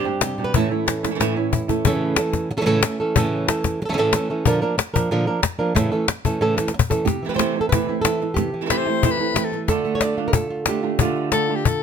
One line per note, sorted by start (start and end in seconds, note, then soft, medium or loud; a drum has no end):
0.00 0.52 G2 medium
0.00 0.52 G3 medium
0.00 0.53 D4 soft
0.00 0.22 G4 medium
0.05 0.52 C4 medium
0.05 0.22 C4 soft
0.05 0.22 D4 soft
0.05 0.22 G4 soft
0.21 0.38 C3 medium
0.21 0.44 G4 medium
0.21 muted nylon-string guitar stroke medium
0.21 cajon slap medium
0.38 0.54 B2 medium
0.38 0.55 C4 soft
0.38 0.55 D4 soft
0.38 0.54 G4 soft
0.44 0.57 B4 medium
0.54 0.70 A2 medium
0.54 1.18 A2 medium
0.54 0.70 E3 medium
0.54 0.71 A3 medium
0.54 0.87 C#4 soft
0.54 0.71 C#4 medium
0.54 1.03 E4 soft
0.54 0.70 E4 medium
0.54 1.69 A4 medium
0.54 cajon bass medium
0.71 1.85 E3 medium
0.71 0.86 A3 soft
0.71 0.86 C#4 soft
0.71 0.86 E4 soft
0.87 1.35 C#4 soft
0.87 muted nylon-string guitar stroke medium
0.87 cajon slap medium
1.03 1.10 A3 soft
1.03 1.10 C#4 soft
1.03 1.10 E4 soft
1.03 1.52 E4 soft
1.03 cajon slap medium
1.11 1.14 E3 soft
1.11 1.14 A3 soft
1.11 1.15 C#4 soft
1.11 1.15 E4 soft
1.15 1.19 E3 soft
1.15 1.19 A3 soft
1.15 1.19 C#4 medium
1.15 1.20 E4 medium
1.20 1.83 A2 medium
1.20 1.35 A2 medium
1.20 1.36 E3 medium
1.20 1.36 A3 medium
1.20 1.36 C#4 medium
1.20 1.35 E4 medium
1.20 cajon slap medium
1.36 1.52 A3 soft
1.36 1.83 C#4 soft
1.36 1.52 C#4 soft
1.36 1.52 E4 soft
1.52 1.83 E4 soft
1.52 muted nylon-string guitar stroke medium
1.52 cajon bass medium
1.68 1.85 A3 soft
1.68 1.84 C#4 soft
1.68 1.84 E4 soft
1.68 1.83 A4 soft
1.68 cajon bass medium
1.85 2.17 A2 medium
1.85 2.17 C#3 medium
1.85 2.18 E3 medium
1.85 2.18 A3 medium
1.85 2.18 C#4 medium
1.85 2.17 A4 medium
1.85 cajon bass medium
2.16 2.50 E3 soft
2.16 2.50 A3 soft
2.16 2.50 C#4 soft
2.16 2.50 A4 soft
2.16 cajon slap medium
2.33 cajon bass medium
2.33 cajon slap soft
2.51 muted nylon-string guitar stroke medium
2.57 2.60 C#3 medium
2.57 2.65 C#3 medium
2.57 2.60 E3 medium
2.57 2.60 A3 medium
2.57 2.61 C#4 medium
2.57 2.61 A4 medium
2.61 2.65 E3 medium
2.61 2.65 A3 medium
2.61 2.65 C#4 medium
2.61 2.66 A4 medium
2.66 2.82 A2 medium
2.66 2.82 C#3 medium
2.66 2.81 E3 medium
2.66 2.82 A3 medium
2.66 2.82 C#4 medium
2.66 2.82 A4 loud
2.83 2.98 E3 medium
2.83 2.99 A3 medium
2.83 2.99 C#4 medium
2.83 2.99 A4 medium
2.83 cajon slap loud
3.00 3.16 E3 soft
3.00 3.16 A3 soft
3.00 3.16 C#4 medium
3.00 3.15 A4 medium
3.16 3.48 A2 medium
3.16 3.48 C#3 medium
3.16 3.48 E3 medium
3.16 3.48 A3 medium
3.16 3.48 C#4 medium
3.16 3.48 A4 loud
3.16 cajon bass medium
3.48 3.81 E3 soft
3.48 3.81 A3 soft
3.48 3.80 C#4 soft
3.48 3.80 A4 medium
3.48 cajon slap loud
3.64 cajon bass medium
3.64 cajon slap soft
3.82 3.89 A4 soft
3.82 muted nylon-string guitar stroke medium
3.89 3.91 C#3 medium
3.89 3.97 C#3 medium
3.89 3.93 E3 medium
3.89 3.93 A3 medium
3.89 3.93 C#4 medium
3.89 3.93 A4 medium
3.94 4.13 A2 medium
3.94 3.97 E3 medium
3.94 3.97 A3 medium
3.94 3.97 C#4 medium
3.94 3.98 A4 medium
3.98 4.13 C#3 medium
3.98 4.13 E3 medium
3.98 4.13 A3 medium
3.98 4.13 C#4 medium
3.98 4.14 A4 medium
4.13 4.29 E3 medium
4.13 4.29 A3 medium
4.13 4.30 C#4 medium
4.13 4.29 A4 medium
4.13 cajon slap loud
4.30 4.46 E3 soft
4.30 4.46 A3 soft
4.30 4.46 C#4 medium
4.30 4.45 A4 medium
4.45 4.61 A#2 medium
4.45 4.62 D3 medium
4.45 4.62 F3 medium
4.45 4.62 A#3 medium
4.45 4.61 D4 medium
4.45 4.61 A#4 medium
4.45 cajon bass medium
4.62 4.77 F3 medium
4.62 4.77 A#3 soft
4.62 4.77 D4 medium
4.62 4.77 A#4 medium
4.62 cajon slap soft
4.78 muted nylon-string guitar stroke medium
4.78 cajon slap loud
4.94 5.11 F3 soft
4.94 5.10 A#3 medium
4.94 5.10 D4 medium
4.94 5.10 A#4 medium
4.94 cajon bass medium
5.11 5.27 A#2 medium
5.11 5.27 D3 medium
5.11 5.27 F3 medium
5.11 5.27 A#3 medium
5.11 5.26 D4 medium
5.11 5.26 A#4 medium
5.27 5.42 F3 soft
5.27 5.42 A#3 soft
5.27 5.42 D4 medium
5.27 5.42 A#4 medium
5.43 muted nylon-string guitar stroke medium
5.43 cajon bass medium
5.43 cajon slap loud
5.59 5.75 F3 medium
5.59 5.75 A#3 medium
5.59 5.75 D4 medium
5.59 5.75 A#4 medium
5.75 5.91 A2 medium
5.75 5.91 C#3 medium
5.75 5.91 E3 medium
5.75 5.91 A3 medium
5.75 5.91 C#4 medium
5.75 5.90 A4 medium
5.75 cajon bass medium
5.75 cajon slap soft
5.92 6.07 E3 medium
5.92 6.07 A3 medium
5.92 6.08 C#4 medium
5.92 6.08 A4 medium
5.92 cajon slap soft
6.08 muted nylon-string guitar stroke medium
6.08 cajon slap medium
6.25 6.40 E3 soft
6.25 6.40 A3 medium
6.25 6.41 C#4 medium
6.25 6.41 A4 medium
6.25 cajon bass medium
6.41 6.57 A2 medium
6.41 6.57 C#3 medium
6.41 6.57 E3 medium
6.41 6.57 A3 medium
6.41 6.56 C#4 medium
6.41 6.56 A4 loud
6.57 6.73 E3 soft
6.57 6.73 A3 soft
6.57 6.73 C#4 soft
6.57 6.73 A4 medium
6.57 cajon slap medium
6.68 cajon slap medium
6.74 muted nylon-string guitar stroke medium
6.79 cajon bass loud
6.90 7.07 E3 soft
6.90 7.07 A3 soft
6.90 7.05 C#4 soft
6.90 7.06 A4 medium
6.90 cajon bass medium
7.05 7.22 C3 medium
7.05 7.63 G4 medium
7.05 muted nylon-string guitar stroke soft
7.05 cajon bass medium
7.05 cajon slap soft
7.23 8.03 E3 soft
7.23 7.28 E3 soft
7.23 7.29 A3 soft
7.23 7.29 C4 soft
7.23 7.29 E4 soft
7.29 7.32 E3 soft
7.29 7.33 A3 soft
7.29 7.33 C4 soft
7.29 7.34 E4 medium
7.29 7.36 B4 medium
7.34 7.37 E3 soft
7.34 7.38 A3 medium
7.34 7.38 C4 medium
7.34 7.38 E4 medium
7.34 7.60 C5 medium
7.38 7.54 C3 medium
7.38 7.55 E3 medium
7.38 7.55 A3 medium
7.38 7.55 C4 medium
7.38 7.54 E4 medium
7.38 cajon slap medium
7.55 7.71 A3 soft
7.55 7.72 C4 soft
7.55 7.71 E4 soft
7.61 7.69 A4 medium
7.69 7.88 C3 medium
7.69 7.88 E3 medium
7.69 7.88 A3 medium
7.69 8.01 B4 medium
7.69 cajon bass medium
7.73 7.88 C4 medium
7.73 7.87 E4 medium
7.88 8.05 A3 soft
7.88 8.04 C4 soft
7.88 8.04 E4 soft
7.88 8.34 E4 soft
8.02 8.53 E3 soft
8.02 8.21 E4 soft
8.02 8.69 A4 medium
8.02 cajon slap loud
8.06 8.21 A3 soft
8.06 8.21 C4 soft
8.22 muted nylon-string guitar stroke soft
8.34 8.54 C3 medium
8.34 9.67 G4 medium
8.34 cajon bass medium
8.34 cajon slap soft
8.38 muted nylon-string guitar stroke medium
8.54 9.33 E3 soft
8.61 8.65 E3 soft
8.61 8.65 A3 soft
8.61 8.65 C4 soft
8.61 8.66 E4 soft
8.66 8.69 E3 soft
8.66 8.70 A3 soft
8.66 8.86 A3 soft
8.66 8.70 C4 medium
8.66 8.70 E4 soft
8.70 8.86 C3 medium
8.70 8.86 E3 medium
8.70 8.86 A3 medium
8.70 8.87 C4 medium
8.70 8.86 E4 medium
8.70 8.79 B4 medium
8.70 cajon slap medium
8.77 9.13 C5 medium
8.87 9.19 A3 soft
8.87 9.03 A3 soft
8.87 9.03 C4 soft
8.87 9.03 E4 soft
9.03 9.19 C3 medium
9.03 9.19 E3 soft
9.03 9.19 A3 medium
9.03 9.19 C4 medium
9.03 9.19 E4 medium
9.03 cajon bass medium
9.11 9.46 B4 medium
9.20 9.51 A3 soft
9.20 9.36 A3 soft
9.20 9.36 C4 soft
9.20 9.35 E4 soft
9.34 9.68 E3 medium
9.34 9.53 A3 soft
9.34 9.52 C4 soft
9.34 9.52 E4 soft
9.34 cajon slap medium
9.44 9.61 A4 medium
9.52 9.85 A3 soft
9.52 muted nylon-string guitar stroke medium
9.68 10.98 D3 medium
9.68 10.01 D3 medium
9.68 10.02 A3 medium
9.68 10.02 D4 medium
9.68 10.02 F4 medium
9.68 10.26 A4 medium
9.68 cajon bass medium
9.68 cajon slap soft
9.85 10.66 A3 medium
9.85 cajon slap soft
9.95 10.02 C#5 medium
10.01 10.18 D3 soft
10.01 10.18 A3 soft
10.01 10.18 D4 soft
10.01 10.16 F4 soft
10.01 10.59 D5 medium
10.01 cajon slap medium
10.17 10.34 A3 soft
10.17 10.34 D4 soft
10.17 10.34 F4 soft
10.17 10.49 F4 soft
10.28 10.34 A#4 medium
10.33 10.67 A4 medium
10.33 muted nylon-string guitar stroke medium
10.33 cajon bass medium
10.50 10.98 F4 soft
10.66 11.83 A3 soft
10.66 10.83 A3 soft
10.66 10.82 D4 soft
10.66 10.81 F4 soft
10.66 11.34 G4 medium
10.66 cajon slap medium
10.83 10.99 A3 soft
10.83 10.99 D4 soft
10.83 10.99 F4 soft
10.99 11.30 D3 medium
10.99 11.83 D3 medium
10.99 11.31 A3 medium
10.99 11.32 D4 medium
10.99 11.32 F4 medium
10.99 11.83 F4 medium
10.99 cajon bass medium
11.16 cajon slap soft
11.31 11.48 D3 soft
11.31 11.48 A3 soft
11.31 11.49 D4 soft
11.31 11.48 F4 soft
11.31 11.57 A4 medium
11.31 cajon slap medium
11.49 11.65 A3 soft
11.49 11.65 D4 soft
11.49 11.65 F4 soft
11.55 11.66 G4 medium
11.65 11.83 A4 medium
11.65 muted nylon-string guitar stroke soft
11.65 cajon bass medium